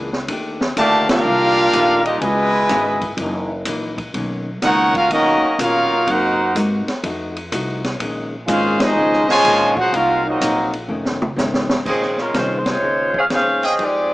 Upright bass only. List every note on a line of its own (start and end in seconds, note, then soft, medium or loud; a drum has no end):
0.00 0.27 C#2 medium
0.28 0.75 D#2 medium
0.77 1.23 D2 loud
1.26 1.72 C2 loud
1.73 2.20 A#1 loud
2.21 2.68 C#2 medium
2.69 3.16 G#1 loud
3.17 3.64 F#1 loud
3.66 4.12 A#1 medium
4.14 4.61 B1 medium
4.62 5.09 C#2 loud
5.10 5.40 D#2 medium
5.42 muted upright bass stroke soft
5.59 6.05 A#2 medium
6.07 6.53 F#2 medium
6.55 6.85 G#2 loud
7.04 7.50 F2 loud
7.52 7.98 C2 loud
8.00 8.46 A#1 medium
8.48 8.94 G#1 loud
8.96 9.43 C#2 medium
9.45 9.91 A#1 loud
9.93 10.39 C2 medium
10.41 10.87 A#1 loud
10.88 11.35 F1 medium
11.36 11.84 G#1 medium
11.85 12.32 A#1 medium
12.34 12.81 C2 medium
12.82 13.29 C#2 medium
13.30 13.77 D#2 medium
13.79 14.14 F2 medium